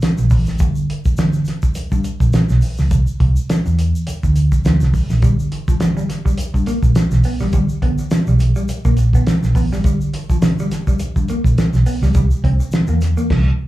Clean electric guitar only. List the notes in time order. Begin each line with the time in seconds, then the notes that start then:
5.23 G3
5.52 muted clean electric guitar stroke
5.68 F3
5.97 G3
6.09 muted clean electric guitar stroke
6.25 G3
6.67 A#3
6.96 muted clean electric guitar stroke
7.25 B3
7.41 G3
7.53 G3
7.83 B3
7.99 muted clean electric guitar stroke
8.28 G3
8.40 muted clean electric guitar stroke
8.56 G3
8.85 A#3
8.99 muted clean electric guitar stroke
9.15 B3
9.28 muted clean electric guitar stroke
9.56 B3
9.73 G3
9.85 G3
10.15 muted clean electric guitar stroke
10.31 F3
10.60 G3
10.73 muted clean electric guitar stroke
10.88 G3
11.30 A#3
11.58 muted clean electric guitar stroke
11.86 B3
12.03 G3
12.15 G3
12.44 C4
12.60 muted clean electric guitar stroke
12.89 A#3
13.02 muted clean electric guitar stroke
13.17 A#3